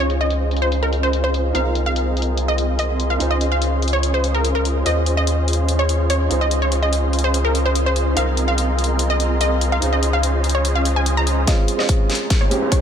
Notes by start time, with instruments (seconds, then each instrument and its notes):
Already playing: sub bass C#2, supersaw synth C#4 F4 G#4 C5 D#5, grand piano D#4 F4 G#4 C5, ambient pad C5 D#5 F5
0.00 synth pluck C#5
0.10 closed hi-hat
0.21 synth pluck D#5
0.30 closed hi-hat
0.51 closed hi-hat
0.57 closed hi-hat
0.62 synth pluck C5
0.72 closed hi-hat
0.83 synth pluck A#4
0.93 closed hi-hat
1.03 synth pluck C5
1.13 closed hi-hat
1.24 synth pluck C5
1.34 closed hi-hat
1.53 sub bass C2, supersaw synth C4 F4 G#4 A#4 D#5, grand piano D#4 F4 A#4 C5, ambient pad A#4 G#5 C6, synth pluck F5, closed hi-hat
1.75 closed hi-hat
1.86 synth pluck F5
1.96 closed hi-hat
2.17 closed hi-hat
2.22 closed hi-hat
2.38 closed hi-hat
2.48 synth pluck D#5
2.58 closed hi-hat
2.79 synth pluck D#5, closed hi-hat
3.00 closed hi-hat
3.10 synth pluck F5
3.18 sub bass C#2, supersaw synth C#4 F4 G#4 C5 D#5, ambient pad C#4 F5 D#6, grand piano D#4 F4 G#4 C5, closed hi-hat
3.31 synth pluck D#5
3.41 closed hi-hat
3.52 synth pluck F5
3.62 closed hi-hat
3.82 closed hi-hat
3.88 closed hi-hat
3.93 synth pluck C#5
4.03 closed hi-hat
4.14 synth pluck C5
4.24 closed hi-hat
4.34 synth pluck A#4
4.45 closed hi-hat
4.55 synth pluck A#4
4.65 closed hi-hat
4.84 sub bass D#2, grand piano C#4 F4 G#4 C5, supersaw synth C#4 F4 G#4 C5 D#5, ambient pad G#4 C6, synth pluck D#5, closed hi-hat
5.06 closed hi-hat
5.17 synth pluck D#5
5.27 closed hi-hat
5.48 closed hi-hat
5.53 closed hi-hat
5.68 closed hi-hat
5.79 synth pluck C#5
5.89 closed hi-hat
6.10 synth pluck C#5, closed hi-hat
6.29 sub bass C#2, supersaw synth C#4 F4 G#4 C5 D#5, ambient pad C#4 D#6, grand piano D#4 F4 G#4 C5, closed hi-hat
6.41 synth pluck D#5
6.51 closed hi-hat
6.62 synth pluck C#5
6.72 closed hi-hat
6.83 synth pluck D#5
6.93 closed hi-hat
7.13 closed hi-hat
7.19 closed hi-hat
7.24 synth pluck C5
7.34 closed hi-hat
7.45 synth pluck A#4
7.55 closed hi-hat
7.66 synth pluck C5
7.75 closed hi-hat
7.86 synth pluck C5
7.96 closed hi-hat
8.15 sub bass C2, supersaw synth C4 F4 G#4 A#4 D#5, grand piano D#4 F4 A#4 C5, ambient pad G#4 A#5, synth pluck F5, closed hi-hat
8.37 closed hi-hat
8.48 synth pluck F5
8.58 closed hi-hat
8.79 closed hi-hat
8.84 closed hi-hat
8.99 closed hi-hat
9.10 synth pluck D#5
9.20 closed hi-hat
9.41 synth pluck D#5, closed hi-hat
9.61 closed hi-hat
9.72 synth pluck F5
9.80 sub bass C#2, supersaw synth C#4 F4 G#4 C5 D#5, ambient pad C#4 D#6, grand piano D#4 F4 G#4 C5, closed hi-hat
9.93 synth pluck D#5
10.03 closed hi-hat
10.13 synth pluck F5
10.23 closed hi-hat
10.44 closed hi-hat
10.49 closed hi-hat
10.55 synth pluck C#5
10.65 closed hi-hat
10.75 synth pluck F5
10.85 closed hi-hat
10.96 synth pluck G#5
11.06 closed hi-hat
11.17 synth pluck A#5
11.27 closed hi-hat
11.47 sub bass D#2, grand piano G#3 C4 C#4 F4, supersaw synth F4, ambient pad A#4 F5 G#5 A#5, synth pluck D#5, kick, snare, closed hi-hat, riser
11.68 closed hi-hat
11.77 grand piano G#3 C4 C#4, synth pluck D#5, snare
11.81 grand piano F4
11.89 kick, closed hi-hat
12.10 snare, closed hi-hat
12.15 closed hi-hat
12.30 kick, snare, closed hi-hat
12.41 sub bass D#2, supersaw synth C#4 F4 G#4 C5 D#5, synth pluck C#5
12.50 grand piano G#3 C4 C#4 G4, closed hi-hat
12.62 sub bass D#2, supersaw synth C#4 F4 G#4 C5 G5
12.72 synth pluck C#5, kick, closed hi-hat